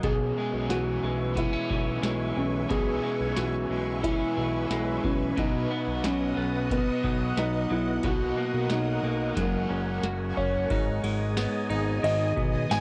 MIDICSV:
0, 0, Header, 1, 7, 480
1, 0, Start_track
1, 0, Tempo, 666667
1, 29, Time_signature, 4, 2, 24, 8
1, 9220, End_track
2, 0, Start_track
2, 0, Title_t, "String machine"
2, 0, Program_c, 0, 50
2, 26, Note_on_c, 0, 76, 66
2, 27, Note_on_c, 0, 80, 70
2, 28, Note_on_c, 0, 71, 77
2, 29, Note_on_c, 0, 85, 76
2, 3839, Note_off_c, 0, 76, 0
2, 3839, Note_off_c, 0, 80, 0
2, 3840, Note_off_c, 0, 85, 0
2, 3872, Note_on_c, 0, 75, 72
2, 3872, Note_on_c, 0, 87, 75
2, 3879, Note_on_c, 0, 78, 66
2, 5760, Note_off_c, 0, 71, 0
2, 5771, Note_off_c, 0, 87, 0
2, 5794, Note_on_c, 0, 70, 71
2, 5794, Note_on_c, 0, 87, 82
2, 6722, Note_off_c, 0, 75, 0
2, 6742, Note_off_c, 0, 87, 0
2, 6747, Note_on_c, 0, 80, 66
2, 6749, Note_on_c, 0, 85, 75
2, 7685, Note_off_c, 0, 78, 0
2, 7691, Note_off_c, 0, 80, 0
2, 7692, Note_off_c, 0, 70, 0
2, 7695, Note_on_c, 0, 68, 79
2, 7698, Note_on_c, 0, 87, 86
2, 7699, Note_on_c, 0, 80, 75
2, 7700, Note_off_c, 0, 85, 0
2, 7700, Note_on_c, 0, 75, 72
2, 9220, Note_off_c, 0, 68, 0
2, 9220, Note_off_c, 0, 75, 0
2, 9220, Note_off_c, 0, 80, 0
2, 9220, Note_off_c, 0, 87, 0
2, 9220, End_track
3, 0, Start_track
3, 0, Title_t, "Felt piano"
3, 0, Program_c, 1, 0
3, 27, Note_on_c, 1, 68, 90
3, 504, Note_on_c, 1, 66, 89
3, 522, Note_off_c, 1, 68, 0
3, 995, Note_on_c, 1, 64, 83
3, 1001, Note_off_c, 1, 66, 0
3, 1714, Note_on_c, 1, 61, 68
3, 1734, Note_off_c, 1, 64, 0
3, 1949, Note_on_c, 1, 68, 89
3, 1959, Note_off_c, 1, 61, 0
3, 2400, Note_off_c, 1, 68, 0
3, 2427, Note_on_c, 1, 66, 80
3, 2907, Note_on_c, 1, 64, 89
3, 2923, Note_off_c, 1, 66, 0
3, 3636, Note_on_c, 1, 61, 70
3, 3650, Note_off_c, 1, 64, 0
3, 3880, Note_off_c, 1, 61, 0
3, 3881, Note_on_c, 1, 63, 79
3, 4363, Note_on_c, 1, 61, 84
3, 4369, Note_off_c, 1, 63, 0
3, 4839, Note_on_c, 1, 59, 86
3, 4850, Note_off_c, 1, 61, 0
3, 5285, Note_off_c, 1, 59, 0
3, 5321, Note_on_c, 1, 63, 89
3, 5559, Note_on_c, 1, 64, 77
3, 5562, Note_off_c, 1, 63, 0
3, 5801, Note_off_c, 1, 64, 0
3, 5801, Note_on_c, 1, 66, 86
3, 6280, Note_on_c, 1, 63, 77
3, 6289, Note_off_c, 1, 66, 0
3, 6760, Note_on_c, 1, 58, 66
3, 6769, Note_off_c, 1, 63, 0
3, 7206, Note_off_c, 1, 58, 0
3, 7467, Note_on_c, 1, 73, 78
3, 8639, Note_off_c, 1, 73, 0
3, 8670, Note_on_c, 1, 75, 96
3, 9153, Note_on_c, 1, 80, 99
3, 9164, Note_off_c, 1, 75, 0
3, 9220, Note_off_c, 1, 80, 0
3, 9220, End_track
4, 0, Start_track
4, 0, Title_t, "Overdriven electric guitar"
4, 0, Program_c, 2, 29
4, 25, Note_on_c, 2, 47, 61
4, 30, Note_on_c, 2, 52, 60
4, 31, Note_on_c, 2, 59, 72
4, 39, Note_on_c, 2, 61, 70
4, 39, Note_on_c, 2, 68, 73
4, 252, Note_off_c, 2, 68, 0
4, 261, Note_on_c, 2, 68, 47
4, 267, Note_off_c, 2, 47, 0
4, 267, Note_off_c, 2, 61, 0
4, 269, Note_off_c, 2, 52, 0
4, 270, Note_off_c, 2, 59, 0
4, 275, Note_on_c, 2, 61, 42
4, 285, Note_on_c, 2, 59, 39
4, 966, Note_on_c, 2, 52, 47
4, 982, Note_off_c, 2, 59, 0
4, 985, Note_off_c, 2, 68, 0
4, 985, Note_on_c, 2, 59, 48
4, 992, Note_off_c, 2, 61, 0
4, 1005, Note_on_c, 2, 61, 48
4, 1019, Note_on_c, 2, 68, 55
4, 1938, Note_off_c, 2, 52, 0
4, 1943, Note_on_c, 2, 47, 68
4, 1946, Note_on_c, 2, 52, 67
4, 1949, Note_off_c, 2, 61, 0
4, 1950, Note_off_c, 2, 59, 0
4, 1952, Note_off_c, 2, 68, 0
4, 1953, Note_on_c, 2, 59, 74
4, 1958, Note_on_c, 2, 61, 73
4, 1960, Note_on_c, 2, 68, 78
4, 2171, Note_off_c, 2, 68, 0
4, 2180, Note_on_c, 2, 68, 47
4, 2183, Note_off_c, 2, 61, 0
4, 2186, Note_off_c, 2, 47, 0
4, 2187, Note_off_c, 2, 52, 0
4, 2191, Note_off_c, 2, 59, 0
4, 2192, Note_on_c, 2, 61, 43
4, 2204, Note_on_c, 2, 59, 37
4, 2889, Note_on_c, 2, 52, 50
4, 2904, Note_off_c, 2, 68, 0
4, 2907, Note_off_c, 2, 59, 0
4, 2910, Note_off_c, 2, 61, 0
4, 2910, Note_on_c, 2, 59, 47
4, 2927, Note_on_c, 2, 61, 53
4, 2941, Note_on_c, 2, 68, 56
4, 3859, Note_off_c, 2, 52, 0
4, 3865, Note_on_c, 2, 47, 74
4, 3869, Note_on_c, 2, 54, 75
4, 3870, Note_off_c, 2, 59, 0
4, 3873, Note_on_c, 2, 59, 80
4, 3875, Note_off_c, 2, 61, 0
4, 3878, Note_on_c, 2, 63, 83
4, 3879, Note_off_c, 2, 68, 0
4, 3882, Note_on_c, 2, 66, 89
4, 4096, Note_off_c, 2, 66, 0
4, 4104, Note_on_c, 2, 66, 45
4, 4107, Note_off_c, 2, 47, 0
4, 4107, Note_off_c, 2, 63, 0
4, 4109, Note_off_c, 2, 54, 0
4, 4111, Note_off_c, 2, 59, 0
4, 4115, Note_on_c, 2, 63, 47
4, 4129, Note_on_c, 2, 59, 39
4, 4817, Note_on_c, 2, 54, 50
4, 4829, Note_off_c, 2, 59, 0
4, 4837, Note_on_c, 2, 59, 48
4, 4870, Note_off_c, 2, 66, 0
4, 4873, Note_on_c, 2, 66, 59
4, 5789, Note_on_c, 2, 47, 77
4, 5792, Note_off_c, 2, 54, 0
4, 5793, Note_off_c, 2, 59, 0
4, 5795, Note_on_c, 2, 54, 66
4, 5799, Note_on_c, 2, 58, 71
4, 5800, Note_off_c, 2, 63, 0
4, 5802, Note_on_c, 2, 63, 82
4, 5805, Note_off_c, 2, 66, 0
4, 5808, Note_on_c, 2, 66, 82
4, 6023, Note_off_c, 2, 66, 0
4, 6029, Note_off_c, 2, 47, 0
4, 6032, Note_off_c, 2, 54, 0
4, 6032, Note_on_c, 2, 66, 53
4, 6034, Note_off_c, 2, 58, 0
4, 6036, Note_off_c, 2, 63, 0
4, 6044, Note_on_c, 2, 63, 45
4, 6052, Note_on_c, 2, 58, 44
4, 6734, Note_on_c, 2, 56, 51
4, 6746, Note_off_c, 2, 58, 0
4, 6751, Note_off_c, 2, 66, 0
4, 6755, Note_on_c, 2, 58, 54
4, 6757, Note_off_c, 2, 63, 0
4, 6771, Note_on_c, 2, 61, 53
4, 6786, Note_on_c, 2, 66, 51
4, 7712, Note_off_c, 2, 58, 0
4, 7720, Note_off_c, 2, 61, 0
4, 7728, Note_off_c, 2, 66, 0
4, 8088, Note_off_c, 2, 56, 0
4, 9220, End_track
5, 0, Start_track
5, 0, Title_t, "Clean electric guitar"
5, 0, Program_c, 3, 27
5, 0, Note_on_c, 3, 54, 50
5, 0, Note_on_c, 3, 58, 51
5, 0, Note_on_c, 3, 63, 55
5, 27, Note_on_c, 3, 47, 72
5, 75, Note_off_c, 3, 63, 0
5, 77, Note_off_c, 3, 58, 0
5, 79, Note_off_c, 3, 54, 0
5, 271, Note_on_c, 3, 56, 55
5, 508, Note_on_c, 3, 52, 55
5, 734, Note_off_c, 3, 56, 0
5, 743, Note_on_c, 3, 56, 46
5, 984, Note_on_c, 3, 59, 54
5, 1102, Note_off_c, 3, 59, 0
5, 1102, Note_on_c, 3, 61, 52
5, 1211, Note_off_c, 3, 52, 0
5, 1220, Note_on_c, 3, 52, 49
5, 1449, Note_off_c, 3, 56, 0
5, 1458, Note_on_c, 3, 56, 49
5, 1691, Note_off_c, 3, 52, 0
5, 1700, Note_on_c, 3, 52, 47
5, 1929, Note_off_c, 3, 47, 0
5, 1938, Note_on_c, 3, 47, 78
5, 2175, Note_off_c, 3, 56, 0
5, 2183, Note_on_c, 3, 56, 57
5, 2419, Note_off_c, 3, 52, 0
5, 2427, Note_on_c, 3, 52, 49
5, 2660, Note_off_c, 3, 56, 0
5, 2668, Note_on_c, 3, 56, 54
5, 2897, Note_off_c, 3, 61, 0
5, 2906, Note_on_c, 3, 61, 60
5, 3139, Note_off_c, 3, 52, 0
5, 3147, Note_on_c, 3, 52, 49
5, 3380, Note_off_c, 3, 56, 0
5, 3388, Note_on_c, 3, 56, 55
5, 3618, Note_off_c, 3, 52, 0
5, 3627, Note_on_c, 3, 52, 49
5, 3857, Note_off_c, 3, 47, 0
5, 3866, Note_on_c, 3, 47, 75
5, 3915, Note_off_c, 3, 61, 0
5, 3916, Note_off_c, 3, 52, 0
5, 3917, Note_off_c, 3, 56, 0
5, 4109, Note_on_c, 3, 59, 64
5, 4347, Note_on_c, 3, 54, 58
5, 4579, Note_off_c, 3, 59, 0
5, 4588, Note_on_c, 3, 59, 51
5, 5066, Note_off_c, 3, 54, 0
5, 5068, Note_on_c, 3, 54, 55
5, 5300, Note_off_c, 3, 59, 0
5, 5308, Note_on_c, 3, 59, 54
5, 5544, Note_off_c, 3, 54, 0
5, 5547, Note_on_c, 3, 54, 52
5, 5779, Note_off_c, 3, 47, 0
5, 5788, Note_on_c, 3, 47, 77
5, 5837, Note_off_c, 3, 59, 0
5, 6031, Note_on_c, 3, 58, 62
5, 6269, Note_off_c, 3, 54, 0
5, 6272, Note_on_c, 3, 54, 54
5, 6502, Note_off_c, 3, 58, 0
5, 6510, Note_on_c, 3, 58, 53
5, 6738, Note_off_c, 3, 54, 0
5, 6743, Note_off_c, 3, 47, 0
5, 6746, Note_on_c, 3, 54, 75
5, 6798, Note_off_c, 3, 58, 0
5, 6984, Note_on_c, 3, 61, 52
5, 7231, Note_on_c, 3, 66, 58
5, 7459, Note_off_c, 3, 61, 0
5, 7467, Note_on_c, 3, 61, 60
5, 7706, Note_on_c, 3, 44, 79
5, 7708, Note_off_c, 3, 66, 0
5, 7711, Note_on_c, 3, 63, 70
5, 7756, Note_off_c, 3, 54, 0
5, 7756, Note_off_c, 3, 61, 0
5, 7946, Note_on_c, 3, 56, 62
5, 8185, Note_on_c, 3, 59, 57
5, 8421, Note_off_c, 3, 63, 0
5, 8424, Note_on_c, 3, 63, 71
5, 8663, Note_on_c, 3, 51, 72
5, 8900, Note_off_c, 3, 59, 0
5, 8903, Note_on_c, 3, 59, 62
5, 9135, Note_off_c, 3, 56, 0
5, 9144, Note_on_c, 3, 56, 60
5, 9220, Note_off_c, 3, 44, 0
5, 9220, Note_off_c, 3, 51, 0
5, 9220, Note_off_c, 3, 56, 0
5, 9220, Note_off_c, 3, 59, 0
5, 9220, Note_off_c, 3, 63, 0
5, 9220, End_track
6, 0, Start_track
6, 0, Title_t, "Analog synth bass"
6, 0, Program_c, 4, 38
6, 23, Note_on_c, 4, 35, 91
6, 237, Note_off_c, 4, 35, 0
6, 383, Note_on_c, 4, 35, 77
6, 491, Note_off_c, 4, 35, 0
6, 499, Note_on_c, 4, 35, 92
6, 715, Note_off_c, 4, 35, 0
6, 744, Note_on_c, 4, 35, 81
6, 1063, Note_off_c, 4, 35, 0
6, 1226, Note_on_c, 4, 35, 94
6, 1438, Note_off_c, 4, 35, 0
6, 1463, Note_on_c, 4, 35, 89
6, 1677, Note_off_c, 4, 35, 0
6, 1708, Note_on_c, 4, 35, 86
6, 1919, Note_off_c, 4, 35, 0
6, 1950, Note_on_c, 4, 35, 99
6, 2161, Note_off_c, 4, 35, 0
6, 2307, Note_on_c, 4, 35, 88
6, 2414, Note_off_c, 4, 35, 0
6, 2430, Note_on_c, 4, 35, 109
6, 2641, Note_off_c, 4, 35, 0
6, 2669, Note_on_c, 4, 35, 89
6, 2986, Note_off_c, 4, 35, 0
6, 3150, Note_on_c, 4, 35, 88
6, 3361, Note_off_c, 4, 35, 0
6, 3389, Note_on_c, 4, 35, 99
6, 3600, Note_off_c, 4, 35, 0
6, 3628, Note_on_c, 4, 35, 83
6, 3840, Note_off_c, 4, 35, 0
6, 3871, Note_on_c, 4, 35, 86
6, 4081, Note_off_c, 4, 35, 0
6, 4230, Note_on_c, 4, 35, 88
6, 4335, Note_off_c, 4, 35, 0
6, 4348, Note_on_c, 4, 35, 92
6, 4560, Note_off_c, 4, 35, 0
6, 4591, Note_on_c, 4, 35, 90
6, 4907, Note_off_c, 4, 35, 0
6, 5069, Note_on_c, 4, 35, 89
6, 5280, Note_off_c, 4, 35, 0
6, 5310, Note_on_c, 4, 35, 90
6, 5521, Note_off_c, 4, 35, 0
6, 5552, Note_on_c, 4, 35, 90
6, 5762, Note_off_c, 4, 35, 0
6, 5789, Note_on_c, 4, 35, 101
6, 6000, Note_off_c, 4, 35, 0
6, 6150, Note_on_c, 4, 35, 90
6, 6255, Note_off_c, 4, 35, 0
6, 6268, Note_on_c, 4, 35, 101
6, 6480, Note_off_c, 4, 35, 0
6, 6508, Note_on_c, 4, 35, 96
6, 6720, Note_off_c, 4, 35, 0
6, 6745, Note_on_c, 4, 30, 95
6, 6958, Note_off_c, 4, 30, 0
6, 6987, Note_on_c, 4, 30, 84
6, 7199, Note_off_c, 4, 30, 0
6, 7225, Note_on_c, 4, 30, 103
6, 7438, Note_off_c, 4, 30, 0
6, 7468, Note_on_c, 4, 30, 89
6, 7680, Note_off_c, 4, 30, 0
6, 7707, Note_on_c, 4, 32, 121
6, 7919, Note_off_c, 4, 32, 0
6, 7946, Note_on_c, 4, 32, 100
6, 8264, Note_off_c, 4, 32, 0
6, 8428, Note_on_c, 4, 32, 108
6, 8639, Note_off_c, 4, 32, 0
6, 8668, Note_on_c, 4, 32, 107
6, 8880, Note_off_c, 4, 32, 0
6, 8908, Note_on_c, 4, 35, 101
6, 9120, Note_off_c, 4, 35, 0
6, 9153, Note_on_c, 4, 32, 104
6, 9220, Note_off_c, 4, 32, 0
6, 9220, End_track
7, 0, Start_track
7, 0, Title_t, "Drums"
7, 23, Note_on_c, 9, 36, 92
7, 23, Note_on_c, 9, 42, 52
7, 95, Note_off_c, 9, 36, 0
7, 95, Note_off_c, 9, 42, 0
7, 502, Note_on_c, 9, 38, 88
7, 505, Note_on_c, 9, 42, 71
7, 574, Note_off_c, 9, 38, 0
7, 577, Note_off_c, 9, 42, 0
7, 983, Note_on_c, 9, 36, 83
7, 987, Note_on_c, 9, 42, 78
7, 1055, Note_off_c, 9, 36, 0
7, 1059, Note_off_c, 9, 42, 0
7, 1227, Note_on_c, 9, 36, 81
7, 1299, Note_off_c, 9, 36, 0
7, 1466, Note_on_c, 9, 42, 69
7, 1467, Note_on_c, 9, 38, 101
7, 1538, Note_off_c, 9, 42, 0
7, 1539, Note_off_c, 9, 38, 0
7, 1947, Note_on_c, 9, 36, 98
7, 1948, Note_on_c, 9, 42, 47
7, 2019, Note_off_c, 9, 36, 0
7, 2020, Note_off_c, 9, 42, 0
7, 2422, Note_on_c, 9, 38, 92
7, 2425, Note_on_c, 9, 42, 75
7, 2494, Note_off_c, 9, 38, 0
7, 2497, Note_off_c, 9, 42, 0
7, 2906, Note_on_c, 9, 36, 79
7, 2910, Note_on_c, 9, 42, 81
7, 2978, Note_off_c, 9, 36, 0
7, 2982, Note_off_c, 9, 42, 0
7, 3388, Note_on_c, 9, 38, 100
7, 3388, Note_on_c, 9, 42, 68
7, 3460, Note_off_c, 9, 38, 0
7, 3460, Note_off_c, 9, 42, 0
7, 3630, Note_on_c, 9, 36, 86
7, 3702, Note_off_c, 9, 36, 0
7, 3870, Note_on_c, 9, 36, 98
7, 3871, Note_on_c, 9, 42, 50
7, 3942, Note_off_c, 9, 36, 0
7, 3943, Note_off_c, 9, 42, 0
7, 4348, Note_on_c, 9, 38, 98
7, 4351, Note_on_c, 9, 42, 75
7, 4420, Note_off_c, 9, 38, 0
7, 4423, Note_off_c, 9, 42, 0
7, 4829, Note_on_c, 9, 36, 91
7, 4834, Note_on_c, 9, 42, 79
7, 4901, Note_off_c, 9, 36, 0
7, 4906, Note_off_c, 9, 42, 0
7, 5071, Note_on_c, 9, 36, 81
7, 5143, Note_off_c, 9, 36, 0
7, 5312, Note_on_c, 9, 38, 98
7, 5312, Note_on_c, 9, 42, 70
7, 5384, Note_off_c, 9, 38, 0
7, 5384, Note_off_c, 9, 42, 0
7, 5784, Note_on_c, 9, 42, 54
7, 5788, Note_on_c, 9, 36, 94
7, 5856, Note_off_c, 9, 42, 0
7, 5860, Note_off_c, 9, 36, 0
7, 6262, Note_on_c, 9, 38, 101
7, 6265, Note_on_c, 9, 42, 77
7, 6334, Note_off_c, 9, 38, 0
7, 6337, Note_off_c, 9, 42, 0
7, 6744, Note_on_c, 9, 36, 83
7, 6746, Note_on_c, 9, 42, 88
7, 6816, Note_off_c, 9, 36, 0
7, 6818, Note_off_c, 9, 42, 0
7, 7224, Note_on_c, 9, 38, 105
7, 7224, Note_on_c, 9, 42, 67
7, 7296, Note_off_c, 9, 38, 0
7, 7296, Note_off_c, 9, 42, 0
7, 7468, Note_on_c, 9, 36, 82
7, 7540, Note_off_c, 9, 36, 0
7, 7705, Note_on_c, 9, 51, 49
7, 7707, Note_on_c, 9, 36, 109
7, 7777, Note_off_c, 9, 51, 0
7, 7779, Note_off_c, 9, 36, 0
7, 7948, Note_on_c, 9, 51, 53
7, 8020, Note_off_c, 9, 51, 0
7, 8187, Note_on_c, 9, 38, 109
7, 8188, Note_on_c, 9, 54, 72
7, 8190, Note_on_c, 9, 51, 69
7, 8259, Note_off_c, 9, 38, 0
7, 8260, Note_off_c, 9, 54, 0
7, 8262, Note_off_c, 9, 51, 0
7, 8429, Note_on_c, 9, 51, 43
7, 8501, Note_off_c, 9, 51, 0
7, 8672, Note_on_c, 9, 51, 76
7, 8744, Note_off_c, 9, 51, 0
7, 8910, Note_on_c, 9, 36, 91
7, 8911, Note_on_c, 9, 51, 38
7, 8982, Note_off_c, 9, 36, 0
7, 8983, Note_off_c, 9, 51, 0
7, 9153, Note_on_c, 9, 38, 109
7, 9153, Note_on_c, 9, 51, 59
7, 9155, Note_on_c, 9, 54, 76
7, 9220, Note_off_c, 9, 38, 0
7, 9220, Note_off_c, 9, 51, 0
7, 9220, Note_off_c, 9, 54, 0
7, 9220, End_track
0, 0, End_of_file